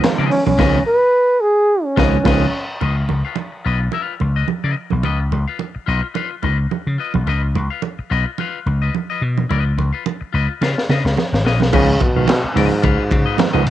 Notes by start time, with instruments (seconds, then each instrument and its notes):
Already playing: tine electric piano D#3 F3 G#3 B3
0.03 snare, clap, closed hi-hat, high conga
0.18 slap bass C#3, clean electric guitar F4 B4 D#5
0.30 trombone C#4, open hi-hat
0.46 slap bass B1, trombone C#4, muted clean electric guitar stroke, high conga
0.58 slap bass C#2, tine electric piano D#3 F3 G#3 B3, clean electric guitar F4 B4 D#5, kick, snare, crash
0.86 trombone B4
1.41 trombone G#4
1.84 trombone C#4
1.96 slap bass C#2, tine electric piano D#3 F3 G#3 B3, clean electric guitar F4 B4 D#5, kick, snare
2.24 slap bass C#2, tine electric piano D#3 F3 G#3 B3, clean electric guitar F4 B4 D#5, kick, snare, crash
2.81 slap bass C#2, clean electric guitar F4 B4 D#5, muted conga
2.97 muted clean electric guitar stroke
3.09 slap bass C#2, muted clean electric guitar stroke, muted conga
3.25 clean electric guitar F4 B4 F5
3.36 muted clean electric guitar stroke, high conga
3.52 muted clean electric guitar stroke
3.65 slap bass B1, clean electric guitar F4 B4 D#5
3.80 muted clean electric guitar stroke
3.92 clean electric guitar F4 B4 F5, muted conga
4.20 slap bass C#2, muted clean electric guitar stroke, muted conga
4.36 clean electric guitar F4 B4 D#5
4.48 muted clean electric guitar stroke, high conga
4.64 slap bass C#3, clean electric guitar F4 B4 D#5
4.76 muted clean electric guitar stroke
4.90 slap bass B1, muted clean electric guitar stroke, high conga
5.03 slap bass C#2, clean electric guitar F4 B4 D#5, muted conga
5.20 muted clean electric guitar stroke
5.32 slap bass C#2, muted clean electric guitar stroke, muted conga
5.48 clean electric guitar F4 B4 F5
5.59 muted clean electric guitar stroke, high conga
5.75 muted clean electric guitar stroke, muted slap bass stroke
5.86 slap bass B1, clean electric guitar F4 B4 D#5
6.03 muted clean electric guitar stroke
6.14 clean electric guitar F4 B4 F5, muted conga
6.31 muted clean electric guitar stroke
6.42 slap bass C#2, clean electric guitar F4 B4 D#5, muted conga, low conga
6.58 muted clean electric guitar stroke
6.70 muted clean electric guitar stroke, high conga
6.87 slap bass C#3
6.98 clean electric guitar F4 B4 D#5
7.14 slap bass B1, muted clean electric guitar stroke, high conga
7.27 slap bass C#2, clean electric guitar F4 B4 D#5, muted conga
7.43 muted clean electric guitar stroke
7.55 slap bass C#2, muted clean electric guitar stroke, muted conga
7.70 clean electric guitar F4 B4 F5
7.82 muted clean electric guitar stroke, high conga
7.99 muted clean electric guitar stroke, muted slap bass stroke
8.10 slap bass B1, clean electric guitar F4 B4 D#5
8.26 muted clean electric guitar stroke
8.38 clean electric guitar F4 B4 F5, muted conga
8.66 slap bass C#2, muted clean electric guitar stroke, muted conga
8.82 clean electric guitar F4 B4 D#5
8.94 high conga
9.10 clean electric guitar F4 B4 D#5
9.22 slap bass B2, muted clean electric guitar stroke
9.37 muted clean electric guitar stroke, high conga
9.49 slap bass C#2, clean electric guitar F4 B4 D#5, muted conga
9.65 muted clean electric guitar stroke
9.77 slap bass C#2, muted clean electric guitar stroke, muted conga
9.93 clean electric guitar F4 B4 F5
10.05 muted clean electric guitar stroke, high conga
10.21 muted clean electric guitar stroke, muted slap bass stroke
10.33 slap bass C#2, clean electric guitar F4 B4 D#5
10.49 muted clean electric guitar stroke
10.61 slap bass C#3, clean electric guitar F4 B4 F5, snare, muted conga
10.77 muted clean electric guitar stroke, snare
10.89 slap bass C#3, clean electric guitar F4 B4 D#5, snare, muted conga, low conga
11.04 slap bass C#2, muted clean electric guitar stroke, snare
11.17 muted clean electric guitar stroke, snare, high conga
11.32 slap bass G#1, snare
11.44 slap bass A#1, clean electric guitar F4 B4 D#5, snare
11.60 slap bass B1, muted clean electric guitar stroke, snare, high conga
11.71 slap bass C#2, trombone C#3, tine electric piano D#3 F3 G#3 B3, clean electric guitar F4 B4 D#5, kick, crash, muted conga
11.88 muted clean electric guitar stroke
12.01 trombone B2, tine electric piano A#3, muted clean electric guitar stroke, kick, ride bell, muted conga
12.15 slap bass B1, tine electric piano D#3 F3 G#3 B3, clean electric guitar F4 B4 F5
12.28 trombone B2, muted clean electric guitar stroke, snare, clap, ride bell, high conga
12.43 tine electric piano G#3 B3, muted clean electric guitar stroke, muted slap bass stroke
12.54 slap bass C#2, trombone G#2, tine electric piano D#3 F3 G#3 B3, clean electric guitar F4 B4 D#5, open hi-hat, ride bell
12.70 muted clean electric guitar stroke
12.82 slap bass C#2, clean electric guitar F4 B4 F5, kick, hi-hat pedal, ride bell, muted conga
13.11 slap bass C#3, muted clean electric guitar stroke, kick, ride bell, muted conga
13.25 tine electric piano G#3 B3, clean electric guitar F4 B4 D#5
13.37 tine electric piano D#3 F3 G#3 B3, muted clean electric guitar stroke, snare, clap, ride bell, high conga
13.53 slap bass C#2, tine electric piano D#3 F3 G#3 B3, clean electric guitar F4 B4 D#5
13.65 slap bass A#1, tine electric piano G#3 C#4, muted clean electric guitar stroke, open hi-hat, ride bell